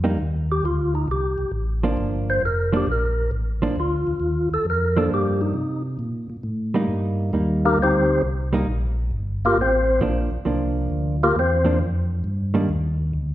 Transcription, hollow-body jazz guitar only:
0.04 0.17 G3 medium
0.04 0.17 A#3 medium
0.04 0.17 D#4 medium
1.83 2.39 F3 medium
1.83 2.40 A#3 medium
1.83 2.40 D4 medium
2.72 2.85 F3 medium
2.72 2.86 A#3 medium
2.72 2.86 D4 medium
3.62 3.75 F3 medium
3.62 3.75 A#3 medium
3.62 3.75 D4 medium
4.97 5.52 F3 medium
4.97 5.53 A#3 medium
4.97 5.53 D4 medium
6.74 7.31 G3 medium
6.74 7.31 A#3 medium
6.74 7.31 D#4 medium
7.33 8.02 G3 medium
7.33 8.03 A#3 medium
7.33 8.03 D#4 medium
8.53 8.66 G3 medium
8.53 8.66 A#3 medium
8.53 8.67 D#4 medium
10.01 10.29 F3 medium
10.01 10.29 A#3 medium
10.01 10.29 D4 medium
10.45 11.15 F3 medium
10.45 11.15 A#3 medium
10.45 11.15 D4 medium
11.65 11.78 F3 medium
11.65 11.78 A#3 medium
11.65 11.78 D4 medium
12.54 12.67 D#3 medium
12.54 12.67 G3 medium
12.54 12.68 A#3 medium
12.54 12.68 D4 medium

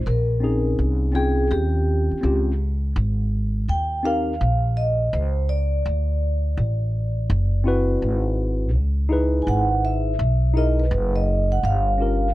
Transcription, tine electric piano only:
0.40 1.11 C4 medium
0.40 1.12 C#4 medium
0.40 1.46 D#4 medium
0.44 1.47 G#4 medium
1.12 2.17 C4 medium
1.12 2.17 C#4 medium
1.12 2.18 F4 medium
1.16 2.19 G5 medium
2.21 2.51 C4 medium
2.21 2.51 C#4 medium
2.21 2.52 F4 medium
2.21 2.53 G4 medium
4.03 4.32 C4 medium
4.03 4.33 D#4 medium
4.03 4.33 G4 medium
4.03 4.34 A#4 medium
7.64 8.68 C4 medium
7.64 8.69 E4 medium
7.64 8.69 F#4 medium
7.64 8.70 B4 medium
9.09 10.13 D#4 medium
9.09 10.13 E4 medium
9.09 10.14 G#4 medium
9.09 10.15 B4 medium
10.54 10.83 D#4 medium
10.54 10.83 E4 medium
10.54 10.84 G#4 medium
10.58 10.85 A#4 medium
11.98 12.27 C#4 medium
11.98 12.28 F4 soft
11.98 12.28 G4 medium
11.98 12.29 A#4 medium

